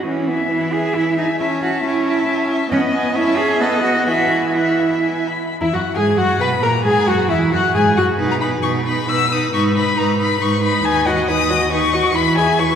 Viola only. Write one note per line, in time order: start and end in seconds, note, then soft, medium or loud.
0.06 0.45 E3 soft
0.50 0.90 E3 medium
0.96 1.35 E3 soft
1.40 1.79 C#4 soft
1.84 2.23 C#4 medium
2.28 2.67 C#4 soft
2.71 3.17 B3 medium
3.15 3.62 C#4 medium
3.60 4.09 B3 medium
4.07 5.29 E3 medium
5.61 5.72 E4 soft
5.73 5.81 F#4 soft
5.95 6.20 G#4 medium
6.18 6.40 F#4 medium
6.41 6.49 B4 medium
6.63 6.71 A#4 medium
6.85 7.09 G#4 medium
7.07 7.31 F#4 medium
7.29 7.53 E4 medium
7.52 7.74 F#4 medium
7.74 7.82 G#4 medium
7.97 8.05 F#4 medium
8.19 8.40 D#4 medium
8.41 8.62 D#4 soft
8.63 8.85 D#4 soft
8.86 9.08 D#4 soft
9.09 9.30 D#4 soft
9.31 9.52 D#4 soft
9.53 9.75 D#4 medium
9.75 9.96 D#4 soft
9.96 10.18 D#4 medium
10.19 10.40 D#4 soft
10.40 10.61 D#4 soft
10.62 10.83 D#4 medium
10.84 11.08 D#4 medium
11.07 11.30 F#4 soft
11.29 11.52 D#4 medium
11.51 11.71 F#4 medium
11.72 11.96 D#4 soft
11.94 12.15 F#4 medium
12.16 12.39 E4 medium
12.38 12.61 G#4 soft
12.60 12.75 E4 soft